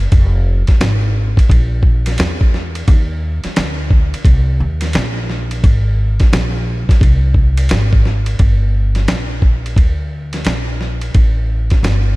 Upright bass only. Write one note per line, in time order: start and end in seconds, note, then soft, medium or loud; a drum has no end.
0.12 0.66 F1 loud
0.68 muted upright bass stroke soft
0.81 1.34 G#1 loud
1.37 muted upright bass stroke soft
1.50 2.15 A#1 loud
2.19 2.85 E2 medium
2.88 3.42 D#2 loud
3.45 muted upright bass stroke soft
3.58 4.11 D2 loud
4.14 muted upright bass stroke soft
4.25 4.58 C2 medium
4.60 4.93 D#2 loud
4.95 5.60 A#1 loud
5.64 6.17 G#1 loud
6.20 muted upright bass stroke soft
6.33 6.86 A#1 loud
6.89 muted upright bass stroke soft
7.01 7.67 C2 loud
7.71 8.36 G#1 loud
8.40 9.05 G1 loud
9.08 9.74 A#1 medium
9.76 10.42 D2 loud
10.46 11.12 A#1 medium
11.15 11.81 A1 loud
11.83 12.16 G1 loud